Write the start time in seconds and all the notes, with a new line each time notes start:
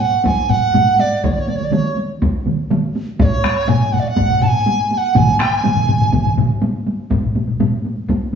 0.00 F#5, taiko high
0.12 taiko high
0.24 G#5, taiko, taiko high
0.37 taiko high
0.50 F#5, taiko low-mid, taiko high
0.62 taiko high
0.74 taiko low-mid, taiko high
0.86 taiko high
0.99 D5, taiko high
1.11 taiko high
1.24 C#5, taiko, taiko mid, taiko high
1.31 D5
1.36 C#5, taiko mid
1.48 D5, taiko mid, taiko high
1.56 C#5
1.60 taiko mid, taiko high
1.64 D5
1.71 C#5, taiko mid, taiko high
1.85 taiko high
1.97 taiko high
2.09 taiko high
2.22 taiko, taiko high
2.46 taiko mid, taiko high
2.59 taiko high
2.70 taiko mid, taiko high
2.83 taiko high
2.95 taiko high
3.07 taiko high
3.19 D5, taiko, taiko low-mid, taiko high
3.24 C#5
3.44 taiko rim, taiko high
3.56 taiko high
3.68 G#5, taiko low-mid, taiko high
3.81 taiko high
3.93 F#5, taiko low-mid, taiko high
4.00 D5
4.05 F#5, taiko high
4.17 taiko, taiko low-mid, taiko high
4.30 taiko low-mid, taiko high
4.42 A5, taiko low-mid
4.47 G#5
4.55 taiko high
4.66 taiko high
4.79 taiko high
4.91 G#5, taiko high
4.98 F#5
5.03 taiko high
5.15 G#5, taiko, taiko low-mid, taiko mid, taiko high
5.27 taiko high
5.40 G5, taiko rim, taiko high
5.55 G#5
5.64 taiko low-mid, taiko mid, taiko high
5.76 taiko low-mid, taiko mid, taiko high
5.88 taiko low-mid, taiko mid, taiko high
6.00 taiko low-mid, taiko mid, taiko high
6.13 taiko, taiko low-mid, taiko mid, taiko high
6.26 taiko low-mid, taiko mid
6.37 taiko low-mid, taiko mid, taiko high
6.49 taiko high
6.62 taiko high
6.74 taiko high
6.86 taiko high
6.99 taiko high
7.11 taiko, taiko low-mid, taiko high
7.23 taiko low-mid
7.35 taiko low-mid, taiko high
7.48 taiko low-mid, taiko high
7.60 taiko low-mid, taiko high
7.73 taiko high
7.85 taiko high
7.97 taiko high
8.09 taiko, taiko high
8.22 taiko high